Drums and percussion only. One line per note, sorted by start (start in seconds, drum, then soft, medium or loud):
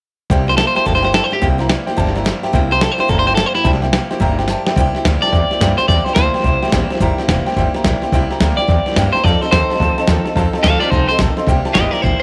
0.30 kick loud
0.30 snare soft
0.48 snare soft
0.58 snare loud
0.58 hi-hat pedal medium
0.77 snare soft
0.86 kick loud
0.86 snare soft
0.95 snare soft
1.04 snare soft
1.14 snare loud
1.14 hi-hat pedal medium
1.32 snare soft
1.42 kick loud
1.42 snare soft
1.59 snare soft
1.70 snare loud
1.70 hi-hat pedal medium
1.87 snare soft
1.98 kick loud
1.98 snare soft
2.07 snare soft
2.16 snare soft
2.26 snare loud
2.26 hi-hat pedal medium
2.44 snare soft
2.53 kick loud
2.53 snare soft
2.71 snare soft
2.81 snare loud
2.81 hi-hat pedal medium
2.99 snare soft
3.09 kick loud
3.09 snare soft
3.27 snare soft
3.37 snare loud
3.37 hi-hat pedal medium
3.55 snare soft
3.64 kick loud
3.64 snare soft
3.73 snare soft
3.82 snare soft
3.93 snare loud
3.93 hi-hat pedal medium
4.11 snare soft
4.20 kick loud
4.20 snare soft
4.39 snare soft
4.48 snare medium
4.48 hi-hat pedal medium
4.67 snare medium
4.76 kick loud
4.76 snare soft
4.95 snare soft
5.05 kick medium
5.05 snare loud
5.05 hi-hat pedal medium
5.23 snare soft
5.28 snare soft
5.33 kick loud
5.33 snare soft
5.51 snare soft
5.61 kick medium
5.61 snare loud
5.61 hi-hat pedal medium
5.79 snare soft
5.88 kick loud
5.88 snare soft
6.06 snare soft
6.16 kick medium
6.16 snare loud
6.16 hi-hat pedal medium
6.34 snare soft
6.40 snare soft
6.44 kick loud
6.44 snare soft
6.63 snare soft
6.68 snare soft
6.72 kick medium
6.72 snare loud
6.72 hi-hat pedal medium
6.90 snare soft
6.95 snare soft
7.00 kick loud
7.00 snare soft
7.18 snare soft
7.28 kick medium
7.28 snare loud
7.28 hi-hat pedal medium
7.47 snare soft
7.52 snare soft
7.56 kick loud
7.56 snare soft
7.75 snare soft
7.84 kick medium
7.84 snare loud
7.84 hi-hat pedal medium
8.02 snare soft
8.12 kick loud
8.12 snare soft
8.31 snare soft
8.40 kick medium
8.40 snare loud
8.40 hi-hat pedal medium
8.58 snare soft
8.68 kick loud
8.68 snare soft
8.86 snare soft
8.92 snare soft
8.96 kick medium
8.96 snare loud
8.96 hi-hat pedal medium
9.14 snare soft
9.24 kick loud
9.24 snare soft
9.43 snare soft
9.52 kick medium
9.52 snare loud
9.52 hi-hat pedal medium
9.70 snare soft
9.76 snare soft
9.80 kick loud
9.80 snare soft
9.98 snare soft
10.08 kick medium
10.08 snare loud
10.08 hi-hat pedal medium
10.26 snare soft
10.36 kick loud
10.36 snare soft
10.53 snare soft
10.64 kick medium
10.64 snare loud
10.64 hi-hat pedal medium
10.82 snare soft
10.92 kick loud
10.92 snare soft
11.09 snare soft
11.19 kick medium
11.19 snare loud
11.19 hi-hat pedal medium
11.37 snare soft
11.47 kick loud
11.47 snare soft
11.65 snare soft
11.75 kick medium
11.75 snare loud
11.75 hi-hat pedal medium
11.93 snare soft
12.04 kick loud
12.04 snare soft